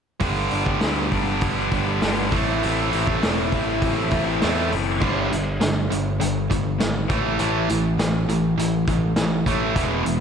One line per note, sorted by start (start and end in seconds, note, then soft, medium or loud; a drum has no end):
0.20 0.49 G1 medium
0.20 0.79 G2 medium
0.20 0.80 D3 medium
0.20 0.50 G3 medium
0.20 0.51 B3 medium
0.20 0.52 D4 medium
0.20 0.52 G4 medium
0.20 kick medium
0.20 open hi-hat medium
0.51 0.79 G1 medium
0.51 0.67 G3 medium
0.51 0.66 B3 medium
0.51 0.65 D4 medium
0.51 0.64 G4 medium
0.51 open hi-hat soft
0.66 0.81 G3 medium
0.66 0.81 B3 medium
0.66 0.81 D4 medium
0.66 0.82 G4 medium
0.66 kick medium
0.81 1.10 D2 medium
0.81 1.41 G2 medium
0.81 1.41 D3 medium
0.81 1.10 G3 medium
0.81 1.11 B3 medium
0.81 1.11 D4 medium
0.81 1.12 G4 medium
0.81 snare loud
0.81 open hi-hat medium
1.11 1.39 G1 medium
1.11 1.27 G3 medium
1.11 1.26 B3 medium
1.11 1.26 D4 medium
1.11 1.25 G4 medium
1.11 kick medium
1.11 open hi-hat soft
1.26 1.58 G3 soft
1.26 1.57 B3 medium
1.26 1.56 D4 medium
1.26 1.55 G4 medium
1.41 1.70 G1 medium
1.41 kick medium
1.41 open hi-hat medium
1.56 1.71 G3 medium
1.56 1.71 B3 medium
1.56 1.73 D4 medium
1.56 1.73 G4 medium
1.71 2.00 G1 medium
1.71 1.87 G3 medium
1.71 1.86 B3 medium
1.71 1.86 D4 medium
1.71 1.85 G4 medium
1.71 kick medium
1.71 open hi-hat soft
1.86 2.01 G3 soft
1.86 2.02 B3 medium
1.86 2.01 D4 medium
1.86 2.02 G4 medium
2.01 2.33 G1 medium
2.01 2.30 G2 medium
2.01 2.30 D3 medium
2.01 2.18 G3 medium
2.01 2.17 B3 medium
2.01 2.17 D4 medium
2.01 2.16 G4 medium
2.01 snare medium
2.01 open hi-hat medium
2.17 2.31 G3 soft
2.17 2.31 B3 medium
2.17 2.31 D4 medium
2.17 2.30 G4 medium
2.30 2.60 A1 medium
2.30 2.60 A2 medium
2.30 2.61 E3 medium
2.30 2.61 A3 medium
2.30 2.62 C4 medium
2.30 2.63 E4 medium
2.30 kick medium
2.30 open hi-hat soft
2.61 2.91 A1 medium
2.61 3.20 A2 medium
2.61 2.90 E3 medium
2.61 2.92 A3 medium
2.61 2.92 C4 medium
2.61 2.93 E4 medium
2.61 open hi-hat medium
2.92 3.21 A1 medium
2.92 3.22 E3 medium
2.92 3.07 A3 medium
2.92 3.06 C4 medium
2.92 3.04 E4 medium
2.92 open hi-hat soft
3.06 3.22 A3 medium
3.06 3.22 C4 medium
3.06 3.23 E4 medium
3.06 kick medium
3.22 3.51 E1 medium
3.22 3.82 A2 medium
3.22 3.51 E3 medium
3.22 3.52 A3 medium
3.22 3.53 C4 medium
3.22 3.54 E4 medium
3.22 snare loud
3.22 open hi-hat medium
3.52 3.80 A1 medium
3.52 3.97 E3 medium
3.52 3.67 A3 medium
3.52 3.66 C4 medium
3.52 3.65 E4 medium
3.52 kick medium
3.52 open hi-hat soft
3.66 3.96 A3 soft
3.66 3.96 C4 medium
3.66 3.94 E4 medium
3.82 4.10 A1 medium
3.82 kick loud
3.82 open hi-hat medium
3.96 4.10 A3 soft
3.96 4.11 C4 medium
3.96 4.12 E4 medium
4.10 4.39 A1 medium
4.10 4.41 E3 medium
4.10 4.27 A3 medium
4.10 4.25 C4 medium
4.10 4.24 E4 medium
4.10 kick medium
4.10 open hi-hat soft
4.25 4.42 A3 medium
4.25 4.42 C4 medium
4.25 4.42 E4 medium
4.41 4.70 E2 medium
4.41 4.86 A2 medium
4.41 4.69 E3 medium
4.41 4.58 A3 medium
4.41 4.56 C4 medium
4.41 4.54 E4 medium
4.41 snare medium
4.41 open hi-hat medium
4.56 4.70 A3 soft
4.56 4.71 C4 medium
4.56 4.71 E4 medium
4.70 5.00 F#1 medium
4.70 4.99 E3 medium
4.70 5.00 A3 medium
4.70 5.00 C4 medium
4.70 5.00 E4 medium
4.70 open hi-hat soft
5.01 5.30 G1 medium
5.01 5.29 G2 medium
5.01 5.30 D3 medium
5.01 5.30 G3 medium
5.01 kick medium
5.01 crash medium
5.30 5.60 G1 medium
5.30 5.58 G2 medium
5.30 5.58 D3 medium
5.30 closed hi-hat medium
5.60 5.90 G1 medium
5.60 5.88 G2 medium
5.60 5.88 D3 medium
5.60 snare loud
5.60 closed hi-hat medium
5.90 6.19 G1 medium
5.90 6.17 G2 medium
5.90 6.18 D3 medium
5.90 closed hi-hat medium
6.20 6.49 G1 medium
6.20 6.47 G2 medium
6.20 6.47 D3 medium
6.20 closed hi-hat medium
6.50 6.79 G1 medium
6.50 6.77 G2 medium
6.50 6.77 D3 medium
6.50 kick medium
6.50 closed hi-hat medium
6.79 7.09 G#1 medium
6.79 7.06 G2 medium
6.79 7.07 D3 medium
6.79 snare loud
6.79 closed hi-hat medium
7.08 7.38 A1 medium
7.08 7.37 A2 medium
7.08 7.37 E3 medium
7.08 7.37 A3 medium
7.08 kick loud
7.08 closed hi-hat medium
7.38 7.68 A1 medium
7.38 7.67 A2 medium
7.38 7.67 E3 medium
7.38 7.67 A3 medium
7.38 closed hi-hat medium
7.69 7.97 A1 medium
7.69 7.96 A2 medium
7.69 7.96 E3 medium
7.69 closed hi-hat medium
7.98 8.26 A1 medium
7.98 8.25 A2 medium
7.98 8.26 E3 medium
7.98 snare loud
7.98 closed hi-hat medium
8.28 8.56 A1 medium
8.28 8.55 A2 medium
8.28 8.55 E3 medium
8.28 closed hi-hat medium
8.57 8.85 A1 medium
8.57 8.84 A2 medium
8.57 8.85 E3 medium
8.57 closed hi-hat medium
8.88 9.15 A1 medium
8.88 9.14 A2 medium
8.88 9.15 E3 medium
8.88 kick medium
8.88 closed hi-hat medium
9.16 9.44 A1 medium
9.16 9.43 A2 medium
9.16 9.44 E3 medium
9.16 snare loud
9.16 closed hi-hat medium
9.46 9.74 A1 medium
9.46 9.74 A2 medium
9.46 9.75 E3 medium
9.46 9.75 A3 medium
9.46 kick medium
9.46 closed hi-hat medium
9.75 10.04 E1 medium
9.75 10.03 E2 medium
9.75 10.03 B2 medium
9.75 10.04 E3 medium
9.75 10.04 G#3 medium
9.75 10.04 B3 medium
9.75 kick loud
9.75 closed hi-hat medium
10.05 10.20 E1 medium
10.05 10.20 E2 medium
10.05 10.20 B2 medium
10.05 10.20 E3 medium
10.05 10.20 G#3 medium
10.05 closed hi-hat medium